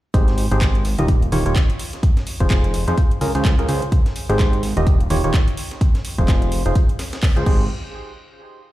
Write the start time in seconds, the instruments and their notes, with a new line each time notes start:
0.14 analog synth bass G#1, synth stab G#3 D#4 G4 G#4 C5, kick, closed hi-hat
0.28 snare, closed hi-hat
0.38 closed hi-hat, open hi-hat
0.51 analog synth bass G#1, synth stab G#3 D#4 G4 G#4 C5, closed hi-hat
0.61 kick, snare, clap, closed hi-hat
0.75 closed hi-hat
0.85 snare, closed hi-hat, open hi-hat
0.99 analog synth bass D#1, synth stab D#3 D#4 F4 G4 D#5, closed hi-hat
1.08 kick, closed hi-hat
1.22 closed hi-hat
1.32 analog synth bass D#1, synth stab D#3 D#4 F4 G4 C#5, snare, closed hi-hat, open hi-hat
1.46 analog synth bass D#1, synth stab D#3 D#4 F4 G4 C#5, closed hi-hat
1.56 kick, snare, clap, closed hi-hat
1.70 closed hi-hat
1.79 closed hi-hat, open hi-hat
1.93 snare, closed hi-hat
2.03 kick, closed hi-hat
2.17 snare, closed hi-hat
2.27 closed hi-hat, open hi-hat
2.40 analog synth bass F1, synth stab F3 D#4 F4 G#4 C5, kick
2.50 kick, snare, clap, closed hi-hat
2.64 closed hi-hat
2.74 closed hi-hat, open hi-hat
2.88 analog synth bass F2, synth stab D#4 F4 G#4 C5, closed hi-hat
2.98 kick, closed hi-hat
3.11 closed hi-hat
3.21 analog synth bass C#2, synth stab C#3 C#4 F4 G#4 A#4, closed hi-hat, open hi-hat
3.35 analog synth bass C#2, synth stab C#3 C#4 F4 G#4 C5, closed hi-hat
3.45 kick, snare, clap, closed hi-hat
3.59 analog synth bass C#2, synth stab C#3 C#4 F4 G#4 A#4, closed hi-hat
3.68 analog synth bass C#2, synth stab C#4 F4 G#4 C5, closed hi-hat, open hi-hat
3.82 closed hi-hat
3.92 kick, closed hi-hat
4.06 snare, closed hi-hat
4.16 closed hi-hat, open hi-hat
4.29 analog synth bass G#1, synth stab G#3 D#4 G4 G#4 C5, closed hi-hat
4.39 kick, snare, clap, closed hi-hat
4.53 closed hi-hat
4.63 snare, closed hi-hat, open hi-hat
4.77 analog synth bass D#1, synth stab D#3 D#4 F4 G4 D#5, closed hi-hat
4.87 kick, closed hi-hat
5.00 closed hi-hat
5.10 analog synth bass D#1, synth stab D#3 D#4 F4 G4 C#5, snare, closed hi-hat, open hi-hat
5.24 analog synth bass D#1, synth stab D#3 D#4 F4 G4 C#5, closed hi-hat
5.34 kick, snare, clap, closed hi-hat
5.48 closed hi-hat
5.57 closed hi-hat, open hi-hat
5.71 snare, closed hi-hat
5.81 kick, closed hi-hat
5.95 snare, closed hi-hat
6.05 closed hi-hat, open hi-hat
6.18 analog synth bass F1, synth stab F3 D#4 F4 G#4 C5, kick, closed hi-hat
6.28 kick, snare, clap, closed hi-hat
6.42 closed hi-hat
6.52 closed hi-hat, open hi-hat
6.66 analog synth bass F1, synth stab D#4 F4 G#4 C5, closed hi-hat
6.75 kick, closed hi-hat
6.89 closed hi-hat
6.99 snare, closed hi-hat, open hi-hat
7.13 snare, closed hi-hat
7.23 kick, snare, clap, closed hi-hat, open hi-hat
7.36 analog synth bass C#2, synth stab C#3 C#4 F4 G#4 C5, closed hi-hat
7.46 analog synth bass G#1, synth stab D#4 G4 G#4 C5, kick, crash